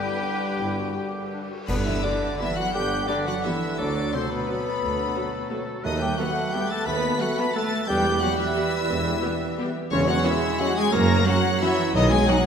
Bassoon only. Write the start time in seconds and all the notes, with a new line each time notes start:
Already playing: D3
1.68 D3
2.03 D3
2.74 D3
3.08 D3
3.79 F#3
4.13 F#3
5.85 A3
6.18 A3
6.87 A3
7.21 A3
7.55 A3
7.88 G3
9.91 G#3
10.24 G#3
10.92 F#3
11.25 F#3
11.95 F#3
12.29 F#3